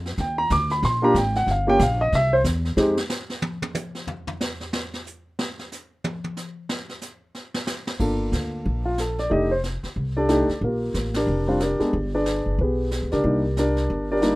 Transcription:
Already playing: upright bass F2
0.06 snare
0.18 upright bass D#2, upright piano G5, brush sweep, snare
0.38 upright piano A#5
0.50 upright bass D2, upright piano D6, snare, hi-hat pedal
0.70 upright piano B5, snare
0.83 upright bass A#1, upright piano C6, brush sweep, snare
1.02 upright piano A#3 D4 F4 G4 A#5
1.14 upright bass G#1, upright piano G5, snare, hi-hat pedal
1.35 upright piano F#5, snare
1.47 upright bass G1, brush sweep, snare
1.51 upright piano F5
1.67 upright piano A#3 C#4 F4 G4 G5
1.79 upright bass A#1, upright piano F5, snare, hi-hat pedal
2.01 upright piano D#5
2.12 upright bass C2, upright piano E5, brush sweep, snare
2.33 upright piano C5
2.44 upright bass E2, snare, hi-hat pedal
2.65 snare
2.77 upright bass F2, upright piano G#3 C4 D#4 G4, snare
2.97 snare
3.10 snare, hi-hat pedal
3.30 snare
3.42 high tom
3.62 high tom
3.75 hi-hat pedal, high tom
3.95 snare
4.07 floor tom
4.27 floor tom
4.41 snare, hi-hat pedal
4.61 snare
4.73 snare
4.94 snare
5.06 hi-hat pedal
5.39 snare
5.59 snare
5.72 snare, hi-hat pedal
6.04 high tom
6.24 high tom
6.37 snare, hi-hat pedal
6.69 snare
6.89 snare
7.02 snare, hi-hat pedal
7.35 snare
7.54 snare
7.67 snare, hi-hat pedal
7.87 snare
7.99 upright bass G1, upright piano A#3 D4 F4 A4, brush sweep, kick, crash
8.32 upright bass D2, snare, hi-hat pedal
8.65 upright bass A#1, brush sweep
8.85 upright piano F4
8.98 upright piano A4, snare, hi-hat pedal
9.18 upright piano D5, snare
9.30 upright bass F1, upright piano A3 D4 D#4 G4 D#5, brush sweep
9.51 upright piano C5
9.64 snare, hi-hat pedal
9.83 muted upright bass stroke, snare
9.96 upright bass C2, brush sweep
10.17 upright piano D4 G4 A4 D5
10.29 upright piano A3 D4 D#4 G4, snare, hi-hat pedal
10.49 muted upright bass stroke, snare
10.61 upright bass A#1, upright piano A#3 F4 G4 A#4, brush sweep
10.94 upright bass A1, snare, hi-hat pedal
11.14 upright piano D4 G4 A#4 D5, snare, ride
11.27 upright bass F1, brush sweep
11.47 upright piano G3 C4 D4 F4
11.60 upright piano D4 G4 A#4 D5, snare, hi-hat pedal
11.79 upright piano G#3 B3 D4 G#4, muted upright bass stroke, snare
11.93 upright bass G1, brush sweep
12.15 upright piano D4 G#4 B4 D5
12.26 snare, hi-hat pedal
12.46 upright bass F#1
12.58 upright bass B1, upright piano B3 G4 G#4 B4, brush sweep
12.91 snare, hi-hat pedal
13.02 upright bass D2
13.11 upright bass C#2, upright piano D4 G4 A#4 D5, snare
13.24 upright bass C2, upright piano G3 A#3 D4 D#4, brush sweep
13.57 upright piano D4 G4 A#4 D5, snare, hi-hat pedal
13.77 snare
13.90 upright bass G1, brush sweep
14.12 upright piano D4 G4 A#4 D5
14.21 upright piano G3 A#3 D4 D#4, snare, hi-hat pedal

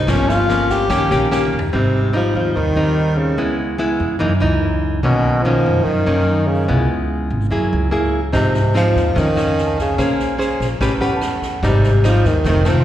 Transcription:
Already playing: tenor saxophone D#4, tine electric piano A#4 C5 D#5 F5
0.07 upright bass G1, nylon-string guitar G2 F3 A#3 C#4, tenor saxophone C#4, kick, cross-stick, snare
0.29 tenor saxophone F4, snare
0.49 nylon-string guitar F3 A#3 C#4, tine electric piano C#5, snare
0.70 tenor saxophone G4, kick, snare
0.90 upright bass D#2, nylon-string guitar D#3 A#3 C#4 G4, kick, cross-stick, snare
1.11 upright bass A#1, nylon-string guitar A#3 C#4 G4, snare
1.31 nylon-string guitar A#3 C#4 G4, snare
1.45 mid tom
1.53 upright bass D#2
1.59 floor tom
1.72 upright bass G#1, nylon-string guitar G#2 G3 C4 D#4, tenor saxophone C3
2.13 tenor saxophone F3, nylon-string guitar G3 C4 D#4
2.35 upright bass D#2, tenor saxophone F3
2.56 upright bass D#2, nylon-string guitar D#3, tenor saxophone D#3
2.76 upright bass D#2, nylon-string guitar G3 C4 D#4
3.18 tenor saxophone C#3
3.37 upright bass C#2, nylon-string guitar C#3 G#3 B3 E4
3.78 nylon-string guitar G#3 B3 E4
4.00 upright bass E2
4.19 nylon-string guitar F#2 E3 A#3 D#4, upright bass F#2
4.40 upright bass C#2, nylon-string guitar E3 A#3 D#4
5.03 upright bass B1, nylon-string guitar B2 D#3 A#3 C#4, tenor saxophone B2
5.43 nylon-string guitar D#3 A#3 C#4, tenor saxophone F3
5.66 upright bass F#2
5.83 upright bass F#2, nylon-string guitar F#2, tenor saxophone D#3
6.06 upright bass F#2, nylon-string guitar D#3 A#3 C#4
6.47 tenor saxophone C#3
6.68 upright bass C#2, nylon-string guitar C#3 G#3 B3 E4
7.30 upright bass G#1
7.51 upright bass F#2, nylon-string guitar F#3 A#3 E4 G#4
7.73 upright bass C#2
7.91 nylon-string guitar A#3 E4 G#4
8.32 nylon-string guitar G#2 F3 C4 D#4, upright bass G#2, tenor saxophone C3, tine electric piano D#5, kick, snare
8.54 snare
8.74 nylon-string guitar F3 C4 D#4, tenor saxophone F3, cross-stick, snare
8.95 upright bass D#2, kick, snare
9.15 nylon-string guitar F2 D#3 A3 C#4, upright bass F2, tenor saxophone D#3, kick, snare
9.36 upright bass C#2, nylon-string guitar D#3 A3 C#4, tine electric piano F5, cross-stick, snare
9.51 tine electric piano G#5
9.58 snare
9.67 tine electric piano A5
9.78 tenor saxophone C#3, kick, snare
9.98 upright bass A#1, nylon-string guitar A#3 C#4 G#4 C5, kick, cross-stick, snare
10.19 snare
10.38 nylon-string guitar C#4 G#4 C5, snare
10.60 upright bass A#1, kick, snare
10.81 upright bass A1, nylon-string guitar A3 C#4 G4 B4, kick, cross-stick, snare
11.01 upright bass E2, nylon-string guitar C#4 G4 B4, tine electric piano F#5, snare
11.17 tine electric piano A5
11.21 cross-stick, snare
11.42 kick, snare
11.63 upright bass G#1, nylon-string guitar G#2 G3 C4 D#4, tenor saxophone C3, kick, snare
11.83 snare
12.04 tenor saxophone F3, nylon-string guitar G3 C4 D#4, cross-stick, snare
12.24 upright bass D#2, tenor saxophone D#3, kick, snare
12.44 upright bass F1, nylon-string guitar F2 D#3 A3 C4, tenor saxophone D#3, kick, snare
12.65 upright bass C2, nylon-string guitar D#3 A3 C4, tine electric piano A5, cross-stick, snare
12.69 tenor saxophone F3
12.80 tine electric piano C6

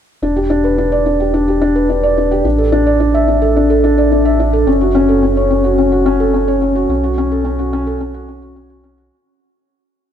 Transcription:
0.22 detuned saw bass E1, felt piano D4
0.36 felt piano G4
0.50 felt piano D4
0.64 felt piano B4
0.78 felt piano D4
0.92 felt piano D5
1.06 felt piano D4
1.20 felt piano G4
1.34 felt piano D4
1.48 felt piano G4
1.61 felt piano D4
1.76 felt piano B4
1.90 felt piano D4
2.03 felt piano D5
2.18 felt piano D4
2.31 felt piano G4
2.44 detuned saw bass A1, felt piano D4
2.58 felt piano A4
2.72 felt piano D4
2.86 felt piano D5
3.00 felt piano D4
3.14 felt piano E5
3.28 felt piano D4
3.42 felt piano A4
3.56 felt piano D4
3.70 felt piano A4
3.84 felt piano D4
3.98 felt piano D5
4.12 felt piano D4
4.25 felt piano E5
4.40 felt piano D4
4.53 felt piano A4
4.66 detuned saw bass F#1, felt piano C#4
4.81 felt piano F#4
4.95 felt piano C#4
5.09 felt piano A4
5.23 felt piano C#4
5.37 felt piano C#5
5.50 felt piano C#4
5.64 felt piano F#4
5.78 felt piano C#4
5.92 felt piano F#4
6.06 felt piano C#4
6.20 felt piano A4
6.34 felt piano C#4
6.48 felt piano C#5
6.62 felt piano C#4
6.75 felt piano F#4
6.89 detuned saw bass B1, felt piano C#4
7.04 felt piano F#4
7.18 felt piano C#4
7.32 felt piano A4
7.45 felt piano C#4
7.59 felt piano F#4
7.73 felt piano C#4
7.87 felt piano A4
8.01 felt piano C#4
8.14 felt piano F#4
8.29 felt piano C#4
8.42 felt piano F#4
8.56 felt piano C#4
8.70 felt piano F#4
8.84 felt piano C#4
8.98 felt piano F#4

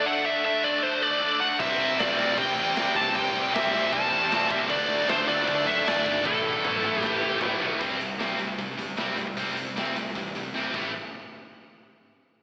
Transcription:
Already playing: analog synth pad D4 A4 E5
0.06 distorted electric guitar D3 A3 D4, lead electric guitar F#5
0.26 lead electric guitar E5
0.44 distorted electric guitar D3 A3 D4, lead electric guitar E5
0.64 distorted electric guitar D3 A3 D4, lead electric guitar D5
0.82 distorted electric guitar D3 A3 D4, lead electric guitar C5
1.02 lead electric guitar D5
1.21 distorted electric guitar D3 A3 D4
1.40 distorted electric guitar D3 A3 D4, lead electric guitar F#5
1.59 fingered electric bass C2, distorted electric guitar C3 G3 C4, analog synth pad C4 G4 D5, lead electric guitar E5, kick, crash
1.78 fingered electric bass C2, crash
1.98 fingered electric bass C2, distorted electric guitar C3 G3 C4, lead electric guitar D5, snare, crash
2.17 fingered electric bass C2, distorted electric guitar C3 G3 C4, crash
2.37 fingered electric bass C3, distorted electric guitar C3 G3 C4, lead electric guitar G5, kick, crash
2.55 fingered electric bass E2, crash
2.74 fingered electric bass C2, distorted electric guitar C3 G3 C4, snare, crash
2.95 fingered electric bass C2, distorted electric guitar C3 G3 C4, lead electric guitar A5, kick, crash
3.15 fingered electric bass C2, distorted electric guitar C3 G3 C4, lead electric guitar G5, kick, crash
3.32 fingered electric bass C2, crash
3.52 fingered electric bass C2, distorted electric guitar C3 G3 C4, lead electric guitar E5, snare, crash
3.71 fingered electric bass C2, distorted electric guitar C3 G3 C4, crash
3.92 distorted electric guitar C3 G3 C4, fingered electric bass C3, lead electric guitar A5, kick, crash
4.11 fingered electric bass E2, crash
4.30 fingered electric bass C2, distorted electric guitar C3 G3 C4, snare, crash
4.50 fingered electric bass C2, distorted electric guitar C3 G3 C4, lead electric guitar E5, kick, crash
4.69 fingered electric bass D2, distorted electric guitar D3 A3 D4, analog synth pad D4 A4 E5, lead electric guitar D5, kick, crash
4.89 fingered electric bass D2, crash
5.00 snare
5.08 fingered electric bass D2, distorted electric guitar D3 A3 D4, lead electric guitar C5, snare, crash
5.27 fingered electric bass D2, distorted electric guitar D3 A3 D4, lead electric guitar D5, crash
5.47 distorted electric guitar D3 A3 D4, fingered electric bass D3, kick, crash
5.66 fingered electric bass F#2, lead electric guitar E5, crash
5.84 fingered electric bass D2, distorted electric guitar D3 A3 D4, lead electric guitar D5, snare, crash
6.06 fingered electric bass G#1, distorted electric guitar D3 A3 D4, kick, crash
6.24 fingered electric bass A1, distorted electric guitar A2 E3 A3, analog synth pad A3 E4 B4, lead electric guitar A4, kick, high tom
6.44 fingered electric bass A1
6.63 fingered electric bass A1, distorted electric guitar A2 E3 A3, mid tom
6.82 fingered electric bass A1, distorted electric guitar A2 E3 A3, mid tom
7.02 distorted electric guitar A2 E3 A3, fingered electric bass A2, lead electric guitar G4, kick, snare
7.22 fingered electric bass C2
7.41 fingered electric bass A1, distorted electric guitar A2 E3 A3, floor tom
7.60 fingered electric bass B1, distorted electric guitar A2 E3 A3, floor tom
7.80 fingered electric bass C2, distorted electric guitar C3 G3 C4, kick, crash
7.99 fingered electric bass C2, distorted electric guitar C3 G3, closed hi-hat
8.18 fingered electric bass C2, distorted electric guitar C3 G3 C4, snare, closed hi-hat
8.39 fingered electric bass C2, distorted electric guitar C3 G3, closed hi-hat
8.58 distorted electric guitar C3 G3, fingered electric bass C3, kick, closed hi-hat
8.77 fingered electric bass G1, distorted electric guitar C3 G3, closed hi-hat
8.97 fingered electric bass C2, distorted electric guitar C3 G3 C4, snare, closed hi-hat
9.16 fingered electric bass G2, distorted electric guitar C3 G3, closed hi-hat
9.27 kick
9.36 fingered electric bass C2, distorted electric guitar C3 G3 C4, kick, closed hi-hat
9.55 fingered electric bass C3, distorted electric guitar C3 G3, closed hi-hat
9.74 fingered electric bass C2, distorted electric guitar C3 G3 C4, snare, closed hi-hat
9.94 fingered electric bass C2, distorted electric guitar C3 G3, closed hi-hat
10.15 fingered electric bass E2, distorted electric guitar C3 G3, kick, closed hi-hat
10.34 fingered electric bass C2, distorted electric guitar C3 G3, closed hi-hat
10.53 fingered electric bass C2, distorted electric guitar C3 G3 C4, snare
10.74 fingered electric bass A1, distorted electric guitar A2 E3 A3, kick, crash

